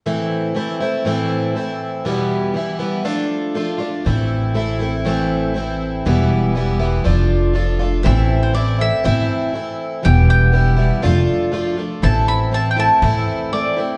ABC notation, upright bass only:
X:1
M:4/4
L:1/8
Q:1/4=120
K:Am
V:1 name="Upright bass" clef=bass
z8 | z8 | A,,,8 | E,,,4 F,,,4 |
A,,,4 A,, z3 | E,,,4 F,,, z3 | A,,,4 A,, z3 |]